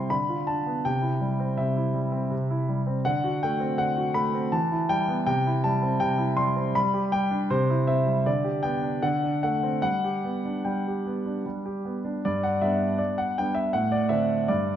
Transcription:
Already playing: C3 G3 C4 E4 G5 A5 C6
0.10 D3 B5
0.29 F4
0.47 D4 A5
0.66 B3
0.85 C3 G5
1.02 E4
1.21 G3
1.40 C4
1.58 C3 E5
1.77 E4
1.94 G3
2.12 C4
2.30 C3
2.50 E4
2.69 G3
2.87 C4
3.05 D3 F#5
3.24 F#4
3.43 A3 G5
3.60 C4
3.78 D3 F#5
3.97 F#4
4.14 A3 B5
4.34 C4
4.52 E3 A5
4.72 E4
4.89 G3 G5
5.08 B3
5.26 C3 G5
5.47 E4
5.64 G3 A5
5.82 C4
6.00 C3 G5
6.18 E4
6.37 G3 C6
6.56 C4
6.75 G3 B5
6.94 G4
7.12 G3 G5
7.31 D4
7.50 C3 C5
7.70 E4
7.87 C4 E5
8.07 G3
8.26 D3 D5
8.44 G4
8.63 B3 G5
8.82 D4
9.02 D3 F#5
9.24 D4
9.43 A3 F#5
9.63 C4
9.82 G3 F#5
10.04 G4
10.24 B3
10.45 D4
10.65 G3 G5
10.88 G4
11.06 B3
11.26 D4
11.46 G3
11.65 G4
11.85 B3
12.05 D4
12.25 G2 D5
12.43 F#5
12.62 G3 B3 D4 E5
12.99 D5
13.18 F#5
13.38 G3 B3 D4 G5
13.55 E5
13.73 A2 F#5
13.92 D5
14.09 D3 C4 D4 E5
14.48 G2 D5

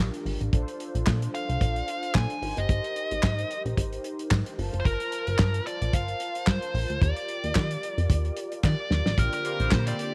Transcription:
Already playing: D4 F4 G4 A#4
0.00 A#1
0.14 closed hi-hat
0.25 G#1, open hi-hat
0.41 A1, closed hi-hat
0.52 A#1 D4 F4 A4 C5, kick, closed hi-hat
0.68 closed hi-hat
0.80 closed hi-hat
0.95 A#1, closed hi-hat
1.06 A#2, kick, snare, clap
1.22 closed hi-hat
1.35 F5, closed hi-hat
1.49 C2, closed hi-hat
1.61 A#1, kick, closed hi-hat
1.76 closed hi-hat
1.88 closed hi-hat
2.03 closed hi-hat
2.14 A#2 G#5, kick, snare, clap
2.30 closed hi-hat
2.42 G#1 D#4 G4 A#4 C5, open hi-hat
2.57 G1 D#5, closed hi-hat
2.69 G#1, kick, closed hi-hat
2.84 closed hi-hat
2.96 closed hi-hat
3.11 G#1, closed hi-hat
3.23 G#2, kick, snare, clap
3.39 closed hi-hat
3.51 closed hi-hat
3.65 A#1, closed hi-hat
3.77 G#1, kick, closed hi-hat
3.93 closed hi-hat
4.04 closed hi-hat
4.19 closed hi-hat
4.31 G#2, kick, snare, clap
4.46 closed hi-hat
4.57 G1 F4 A#4 C5 A5, open hi-hat
4.73 F#1, closed hi-hat
4.80 C5
4.85 G1 A#4, kick, closed hi-hat
5.00 closed hi-hat
5.12 closed hi-hat
5.27 G1, closed hi-hat
5.38 G2, kick, snare, clap
5.54 closed hi-hat
5.67 D5, closed hi-hat
5.81 A#1, closed hi-hat
5.93 G1 F5, kick, closed hi-hat
6.08 closed hi-hat
6.20 closed hi-hat
6.35 closed hi-hat
6.47 G2 C5, kick, snare, clap
6.62 closed hi-hat
6.74 A#1, open hi-hat
6.90 D2, closed hi-hat
7.01 D#2 F4 G4 A#4 D5, kick, closed hi-hat
7.17 closed hi-hat
7.29 closed hi-hat
7.44 D#2, closed hi-hat
7.55 D#3, kick, snare, clap
7.71 closed hi-hat
7.83 closed hi-hat
7.98 F2, closed hi-hat
8.10 D#2, kick, closed hi-hat
8.25 closed hi-hat
8.37 closed hi-hat
8.52 closed hi-hat
8.64 D#3 D5, kick, snare, clap
8.90 D#2, snare
9.06 A1, snare
9.17 A#1 D3 A#3 C4 F4 G4 A#4 C5 D5, kick, closed hi-hat
9.33 A#4, closed hi-hat
9.45 G3 A#3 F4 A#4, closed hi-hat
9.60 A#1 G3 C4 F4 C5, closed hi-hat
9.71 A#2 G3 A#3 F4 A#4 C5, kick, snare, clap
9.87 G3 C4 F4 C5 D5, closed hi-hat
9.99 closed hi-hat

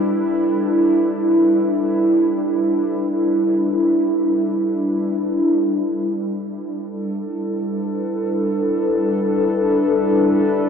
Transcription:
Already playing: G3 D4 E4 A4 B4
5.62 G3
6.38 D4
6.54 A4
6.78 E4
7.52 B4

